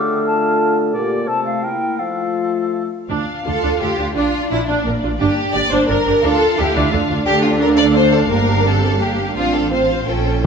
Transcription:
0.00 0.96 D3 medium
0.00 0.91 A3 medium
0.00 0.91 F4 medium
0.00 0.97 A4 medium
0.00 0.77 F5 medium
0.00 0.26 D6 medium
0.27 0.76 A5 medium
0.94 1.30 A#2 medium
0.94 1.26 A#3 medium
0.94 1.26 G4 medium
0.94 1.29 G4 soft
0.94 1.29 D5 medium
1.28 1.74 C3 soft
1.28 1.61 A3 soft
1.28 1.61 F4 soft
1.28 1.62 F4 soft
1.28 1.65 A4 soft
1.28 1.44 A5 medium
1.46 1.65 F5 medium
1.63 1.97 A#3 soft
1.63 2.01 E4 soft
1.63 1.98 E4 soft
1.63 2.00 A#4 soft
1.63 2.01 G5 medium
1.99 2.87 F3 soft
1.99 2.88 A3 soft
1.99 2.91 F4 soft
1.99 2.88 F4 soft
1.99 2.91 A4 soft
1.99 2.73 F5 medium
3.09 3.17 D2 medium
3.09 3.26 D4 medium
3.09 3.43 D4 medium
3.09 4.12 F5 medium
3.46 3.53 D2 medium
3.46 3.53 D4 soft
3.46 3.53 F4 soft
3.46 4.12 F4 medium
3.46 3.80 A4 medium
3.63 3.70 D2 medium
3.63 3.79 D4 medium
3.80 3.88 D2 soft
3.80 3.87 D4 medium
3.80 4.15 G4 medium
3.80 3.87 A4 soft
3.98 4.06 D2 medium
3.98 4.05 D4 soft
3.98 4.05 F4 medium
4.15 4.23 A#1 medium
4.15 4.85 D4 medium
4.15 4.32 D4 medium
4.15 4.49 F4 medium
4.15 6.19 D5 medium
4.50 4.57 A#1 medium
4.50 4.58 D4 soft
4.50 4.67 E4 medium
4.50 4.58 F4 medium
4.66 4.75 A#1 medium
4.66 5.01 D4 medium
4.66 4.84 D4 medium
4.85 4.92 A#1 soft
4.85 5.53 A#3 medium
4.85 4.92 D4 soft
4.85 4.92 A#4 medium
5.03 5.10 A#1 medium
5.03 5.10 D4 medium
5.03 5.10 F4 medium
5.20 5.26 G1 medium
5.20 5.36 D4 medium
5.20 5.52 G4 loud
5.53 5.62 G1 medium
5.53 5.88 A#3 medium
5.53 5.61 D4 medium
5.53 5.62 G4 medium
5.53 5.71 D5 loud
5.71 5.78 G1 medium
5.71 5.87 D4 medium
5.71 5.89 C5 loud
5.88 5.96 G1 medium
5.88 6.23 D4 medium
5.88 5.96 D4 medium
5.88 6.22 A#4 loud
5.88 5.96 A#4 medium
6.06 6.13 G1 medium
6.06 6.13 D4 medium
6.06 6.13 G4 medium
6.23 6.30 D2 medium
6.23 6.39 D4 medium
6.23 6.58 F4 medium
6.23 6.58 A4 loud
6.23 7.25 F5 medium
6.57 6.65 D2 medium
6.57 6.65 D4 medium
6.57 6.92 E4 medium
6.57 6.65 F4 medium
6.57 6.75 G4 loud
6.75 6.82 D2 medium
6.75 6.91 D4 medium
6.75 7.09 F4 medium
6.92 6.99 D2 medium
6.92 8.31 D4 medium
6.92 7.00 D4 medium
6.92 7.00 A4 medium
7.09 7.16 D2 medium
7.09 7.17 D4 medium
7.09 7.17 F4 medium
7.26 8.26 D2 medium
7.26 9.32 D4 medium
7.26 7.42 G4 loud
7.26 8.27 A4 medium
7.26 9.31 F5 medium
7.44 7.61 F4 loud
7.61 7.68 A#4 loud
7.77 7.84 D5 loud
7.95 8.12 C5 loud
8.12 8.30 A4 medium
8.30 9.35 G1 medium
8.30 8.65 A#3 medium
8.30 9.31 G4 medium
8.30 8.65 A#4 loud
8.65 9.00 C4 medium
8.65 9.00 A4 loud
9.00 9.35 A#3 medium
9.00 9.35 G4 medium
9.35 10.03 A1 medium
9.35 9.68 C4 medium
9.35 9.71 D4 medium
9.35 9.68 F4 medium
9.35 9.53 F4 loud
9.35 9.69 F5 medium
9.55 9.72 A4 medium
9.69 10.06 C4 medium
9.69 10.07 C4 medium
9.69 10.05 F4 medium
9.69 10.07 C5 medium
9.69 10.06 F5 medium
10.06 10.43 A#1 medium
10.06 10.43 C#4 medium
10.06 10.43 F4 medium
10.06 10.44 A4 medium
10.06 10.44 G5 medium
10.42 10.46 C2 medium
10.42 10.46 C4 medium
10.42 10.46 E4 medium

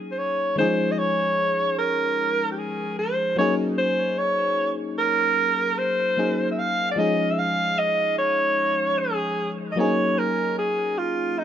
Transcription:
0.00 0.13 F#3 medium
0.00 0.13 A#3 medium
0.00 0.14 C#4 medium
0.00 0.14 D#4 medium
0.00 0.15 G#4 medium
0.11 0.20 C5 medium
0.19 0.58 C#5 medium
0.56 0.63 D#3 medium
0.56 3.33 G#3 medium
0.56 3.34 C#4 medium
0.56 3.34 D#4 medium
0.56 0.93 C5 loud
0.60 3.36 F3 medium
0.60 3.35 G#4 medium
0.91 1.00 D#5 medium
0.98 1.78 C#5 loud
1.79 2.47 A#4 loud
2.51 2.60 G4 medium
2.59 2.98 G#4 medium
2.99 3.35 C5 loud
3.36 6.13 F#3 medium
3.36 6.13 A#3 medium
3.36 6.14 C#4 medium
3.36 6.14 D#4 medium
3.36 3.54 C#5 loud
3.41 6.15 G#4 medium
3.78 4.20 C5 loud
4.18 4.71 C#5 loud
4.99 5.80 A#4 loud
5.78 6.51 C5 loud
6.17 6.97 F#3 medium
6.17 6.98 A#3 soft
6.17 6.97 C#4 soft
6.17 6.98 D#4 soft
6.17 6.99 G#4 medium
6.51 6.60 E5 medium
6.59 6.91 F5 loud
6.92 7.00 D5 medium
6.96 9.73 F3 medium
6.96 9.73 G#3 medium
6.96 9.74 C#4 medium
6.96 9.74 D#4 medium
6.96 7.33 D#5 loud
7.00 9.75 G#4 medium
7.32 7.40 E5 medium
7.39 7.80 F5 loud
7.79 8.18 D#5 loud
8.19 9.00 C#5 loud
8.99 9.51 G#4 loud
9.72 9.80 D#5 medium
9.76 11.44 F#3 medium
9.76 11.44 A#3 medium
9.76 9.84 C4 medium
9.76 11.44 D#4 medium
9.76 10.20 C#5 loud
9.80 11.44 G#4 medium
9.85 11.44 C#4 medium
10.19 10.58 A#4 loud
10.59 11.00 G#4 medium
10.99 11.40 F4 loud
11.39 11.44 D#4 loud

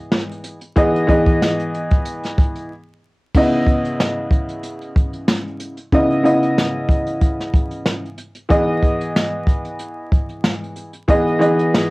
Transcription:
0.00 0.56 E3 medium
0.00 0.57 B3 medium
0.00 0.57 G#4 medium
0.00 0.57 D#5 loud
0.12 snare loud
0.31 closed hi-hat medium
0.44 closed hi-hat medium
0.61 closed hi-hat medium
0.76 1.05 E3 loud
0.76 1.06 B3 medium
0.76 1.07 G#4 medium
0.76 1.07 D#5 loud
0.76 kick loud
0.76 closed hi-hat loud
0.95 closed hi-hat soft
1.07 2.69 E3 loud
1.07 2.69 B3 medium
1.07 2.70 G#4 medium
1.07 2.70 D#5 loud
1.07 kick medium
1.07 closed hi-hat medium
1.26 kick loud
1.26 closed hi-hat medium
1.42 snare loud
1.59 closed hi-hat medium
1.74 closed hi-hat medium
1.91 kick loud
1.91 closed hi-hat medium
2.05 closed hi-hat loud
2.23 snare soft
2.23 closed hi-hat soft
2.38 kick loud
2.38 closed hi-hat medium
2.55 closed hi-hat soft
3.34 5.74 C#3 medium
3.34 5.74 B3 medium
3.34 5.74 E4 medium
3.34 5.75 D#5 medium
3.34 kick loud
3.34 crash medium
3.67 kick medium
3.67 closed hi-hat medium
3.85 closed hi-hat soft
4.00 snare loud
4.31 kick medium
4.31 closed hi-hat medium
4.49 closed hi-hat soft
4.63 closed hi-hat loud
4.81 closed hi-hat soft
4.96 kick loud
4.96 closed hi-hat medium
5.13 closed hi-hat soft
5.28 snare loud
5.47 closed hi-hat soft
5.60 closed hi-hat medium
5.77 closed hi-hat medium
5.92 6.21 C#3 medium
5.92 6.22 B3 medium
5.92 6.23 E4 medium
5.92 6.23 D#5 loud
5.92 kick loud
5.92 closed hi-hat medium
6.12 closed hi-hat soft
6.23 8.04 C#3 medium
6.23 8.04 B3 medium
6.23 8.04 E4 medium
6.23 8.05 D#5 loud
6.23 closed hi-hat medium
6.43 closed hi-hat soft
6.58 snare loud
6.89 kick medium
6.89 closed hi-hat medium
7.07 closed hi-hat soft
7.21 kick loud
7.21 closed hi-hat loud
7.41 snare soft
7.54 kick loud
7.54 closed hi-hat medium
7.71 closed hi-hat soft
7.86 snare loud
8.06 closed hi-hat soft
8.18 closed hi-hat medium
8.35 closed hi-hat medium
8.49 10.88 E3 medium
8.49 10.89 B3 medium
8.49 10.89 G#4 medium
8.49 10.90 D#5 loud
8.49 kick loud
8.49 closed hi-hat medium
8.83 kick medium
8.83 closed hi-hat medium
9.01 closed hi-hat medium
9.16 snare loud
9.47 kick medium
9.47 closed hi-hat medium
9.65 closed hi-hat soft
9.79 closed hi-hat loud
10.12 kick loud
10.12 closed hi-hat medium
10.29 closed hi-hat soft
10.44 snare loud
10.64 closed hi-hat soft
10.76 closed hi-hat medium
10.93 closed hi-hat medium
11.08 11.38 E3 medium
11.08 11.38 B3 medium
11.08 11.39 G#4 medium
11.08 11.39 D#5 loud
11.08 kick loud
11.08 closed hi-hat medium
11.28 closed hi-hat soft
11.39 11.90 E3 loud
11.39 11.90 B3 medium
11.39 11.90 G#4 medium
11.39 11.90 D#5 medium
11.39 closed hi-hat medium
11.59 closed hi-hat soft
11.74 snare loud

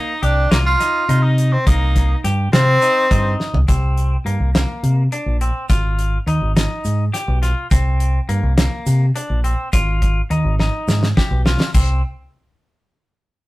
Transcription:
0.00 0.13 A#3 loud
0.00 0.24 D#4 medium
0.22 0.46 C2 medium
0.22 0.51 D4 medium
0.22 0.46 G4 medium
0.22 closed hi-hat medium
0.51 0.74 C2 loud
0.51 0.58 A#3 medium
0.51 0.75 F4 medium
0.51 snare loud
0.51 closed hi-hat medium
0.51 shaker soft
0.66 1.24 F4 loud
0.80 1.04 D#4 medium
0.80 snare soft
0.80 closed hi-hat medium
0.80 shaker medium
1.09 1.55 C3 medium
1.09 1.57 D#4 medium
1.09 closed hi-hat medium
1.09 shaker soft
1.23 1.54 D#4 medium
1.38 closed hi-hat medium
1.52 1.66 C4 medium
1.67 2.13 C2 medium
1.67 2.14 A#3 medium
1.67 2.20 D#4 medium
1.67 kick loud
1.67 closed hi-hat medium
1.67 shaker soft
1.96 kick medium
1.96 snare soft
1.96 closed hi-hat medium
1.96 shaker soft
2.24 2.47 G2 medium
2.24 2.48 G4 medium
2.24 snare soft
2.24 closed hi-hat medium
2.53 2.76 C3 loud
2.53 3.35 C4 loud
2.53 2.77 F4 medium
2.53 snare loud
2.53 closed hi-hat medium
2.53 shaker soft
2.82 3.06 D#4 medium
2.82 closed hi-hat medium
2.82 shaker medium
3.11 3.34 G2 medium
3.11 3.58 D#4 medium
3.11 kick loud
3.11 closed hi-hat medium
3.40 snare soft
3.53 3.65 C2 medium
3.53 floor tom medium
3.68 4.15 C2 medium
3.68 4.16 C4 medium
3.68 kick loud
3.68 closed hi-hat medium
3.68 shaker medium
3.97 closed hi-hat medium
4.25 4.37 G2 medium
4.25 4.50 A#3 medium
4.25 closed hi-hat medium
4.40 4.63 C2 medium
4.54 5.02 A#3 medium
4.54 snare loud
4.54 closed hi-hat medium
4.54 shaker soft
4.83 5.07 C3 medium
4.83 closed hi-hat medium
5.12 5.36 D4 medium
5.12 closed hi-hat medium
5.12 shaker soft
5.26 5.50 A#1 medium
5.41 5.65 C4 medium
5.41 closed hi-hat medium
5.69 6.16 G#1 medium
5.69 6.17 F4 medium
5.69 kick loud
5.69 closed hi-hat medium
5.69 shaker soft
5.99 closed hi-hat medium
6.26 6.39 D#2 medium
6.26 6.51 D#4 medium
6.26 closed hi-hat medium
6.41 6.65 G#1 medium
6.56 7.04 D#4 medium
6.56 snare loud
6.56 closed hi-hat medium
6.56 shaker soft
6.84 7.08 G#2 medium
6.84 closed hi-hat medium
6.84 shaker medium
7.13 7.37 G4 medium
7.13 snare soft
7.13 closed hi-hat medium
7.13 shaker soft
7.28 7.51 B1 medium
7.42 7.66 F4 medium
7.42 snare soft
7.42 closed hi-hat medium
7.71 8.18 C2 medium
7.71 8.19 C4 medium
7.71 kick loud
7.71 closed hi-hat medium
7.71 shaker soft
8.00 closed hi-hat medium
8.29 8.40 G2 medium
8.29 8.53 A#3 medium
8.29 closed hi-hat medium
8.43 8.66 C2 loud
8.58 9.05 A#3 medium
8.58 snare loud
8.58 closed hi-hat medium
8.58 shaker soft
8.86 9.10 C3 medium
8.86 closed hi-hat medium
8.86 shaker medium
9.15 9.39 D4 medium
9.15 closed hi-hat medium
9.15 shaker soft
9.30 9.53 A#1 medium
9.44 9.68 C4 medium
9.44 closed hi-hat medium
9.73 10.20 G#1 medium
9.73 10.21 F4 medium
9.73 kick loud
9.73 closed hi-hat medium
9.73 shaker medium
10.02 kick medium
10.02 closed hi-hat medium
10.30 10.42 D#2 medium
10.30 10.54 D#4 medium
10.30 closed hi-hat medium
10.44 10.68 G#1 medium
10.59 11.07 D#4 medium
10.59 snare medium
10.88 11.11 G#2 medium
10.88 snare medium
10.88 shaker medium
11.03 snare medium
11.17 11.41 G4 medium
11.17 kick loud
11.17 snare medium
11.31 11.54 B1 medium
11.46 11.69 F4 medium
11.46 snare medium
11.46 shaker soft
11.60 snare medium
11.74 12.01 C2 medium
11.74 12.01 C4 medium
11.74 kick loud
11.74 crash loud
11.74 shaker medium

